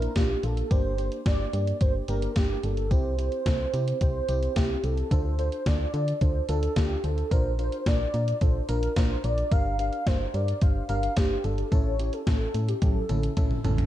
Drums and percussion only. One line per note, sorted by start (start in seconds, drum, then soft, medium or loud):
0.02 closed hi-hat medium
0.16 kick loud
0.16 snare loud
0.16 closed hi-hat medium
0.43 closed hi-hat medium
0.57 closed hi-hat soft
0.71 kick loud
0.71 closed hi-hat medium
0.98 closed hi-hat medium
1.12 closed hi-hat soft
1.26 kick loud
1.26 snare loud
1.26 closed hi-hat medium
1.53 closed hi-hat medium
1.67 closed hi-hat medium
1.81 kick loud
1.81 closed hi-hat medium
2.08 closed hi-hat medium
2.22 closed hi-hat medium
2.36 kick loud
2.36 snare loud
2.36 closed hi-hat medium
2.63 closed hi-hat medium
2.77 closed hi-hat soft
2.91 kick loud
2.91 closed hi-hat medium
3.19 closed hi-hat medium
3.32 closed hi-hat soft
3.46 kick loud
3.46 snare loud
3.46 closed hi-hat medium
3.74 closed hi-hat medium
3.88 closed hi-hat medium
4.01 kick loud
4.01 closed hi-hat medium
4.28 closed hi-hat medium
4.43 closed hi-hat medium
4.56 kick loud
4.56 snare loud
4.56 closed hi-hat medium
4.84 closed hi-hat medium
4.97 closed hi-hat soft
5.11 kick loud
5.11 closed hi-hat medium
5.39 closed hi-hat medium
5.52 closed hi-hat soft
5.66 kick loud
5.66 snare loud
5.66 closed hi-hat medium
5.94 closed hi-hat medium
6.08 closed hi-hat medium
6.21 kick loud
6.21 closed hi-hat medium
6.49 closed hi-hat medium
6.63 closed hi-hat medium
6.76 kick loud
6.76 snare loud
6.76 closed hi-hat medium
7.04 closed hi-hat medium
7.18 closed hi-hat soft
7.31 kick loud
7.31 closed hi-hat medium
7.59 closed hi-hat medium
7.72 closed hi-hat soft
7.86 kick loud
7.86 snare loud
7.86 closed hi-hat medium
8.14 closed hi-hat medium
8.28 closed hi-hat medium
8.41 kick loud
8.41 closed hi-hat medium
8.69 closed hi-hat medium
8.83 closed hi-hat medium
8.96 kick loud
8.96 snare loud
8.96 closed hi-hat medium
9.24 closed hi-hat medium
9.38 closed hi-hat soft
9.52 kick loud
9.52 closed hi-hat medium
9.79 closed hi-hat medium
9.93 closed hi-hat soft
10.07 kick loud
10.07 snare loud
10.07 closed hi-hat medium
10.34 closed hi-hat medium
10.48 closed hi-hat medium
10.61 kick loud
10.61 closed hi-hat medium
10.89 closed hi-hat medium
11.03 closed hi-hat medium
11.17 kick loud
11.17 snare loud
11.17 closed hi-hat medium
11.44 closed hi-hat medium
11.58 closed hi-hat soft
11.72 kick loud
11.72 closed hi-hat medium
11.99 closed hi-hat medium
12.13 closed hi-hat soft
12.27 kick loud
12.27 snare loud
12.27 closed hi-hat medium
12.54 closed hi-hat medium
12.68 closed hi-hat medium
12.82 kick loud
12.82 closed hi-hat medium
12.82 high tom medium
13.09 closed hi-hat medium
13.09 mid tom medium
13.23 closed hi-hat medium
13.37 kick loud
13.37 closed hi-hat medium
13.37 mid tom medium
13.51 mid tom medium
13.64 closed hi-hat medium
13.64 floor tom loud
13.78 closed hi-hat soft
13.78 floor tom medium